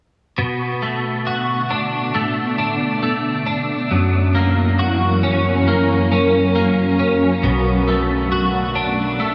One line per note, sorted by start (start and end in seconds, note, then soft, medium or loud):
0.38 3.91 B2 medium
0.38 3.88 A3 medium
0.38 3.87 B3 medium
0.38 3.87 D4 medium
0.82 2.13 A3 soft
1.27 4.77 F#4 medium
1.70 2.57 D4 soft
2.15 3.01 A3 medium
2.58 3.45 D4 soft
3.03 4.00 A3 soft
3.46 3.99 D4 soft
3.90 7.44 F#2 medium
3.90 7.40 F#3 medium
3.90 7.40 C#4 medium
3.90 5.65 E4 medium
3.90 7.40 A#4 medium
4.35 5.66 A#3 soft
4.79 8.29 F#4 medium
5.23 6.10 C#4 soft
5.66 6.54 A#3 medium
5.66 7.42 F#4 medium
6.12 6.98 C#4 soft
6.55 7.53 A#3 medium
6.99 7.52 C#4 soft
7.43 9.35 B1 medium
7.43 9.35 B2 medium
7.43 9.35 A3 medium
7.43 9.35 B3 medium
7.43 9.35 D4 medium
7.88 9.19 A3 soft
8.32 9.35 F#4 medium
8.75 9.35 D4 medium
9.20 9.35 A3 medium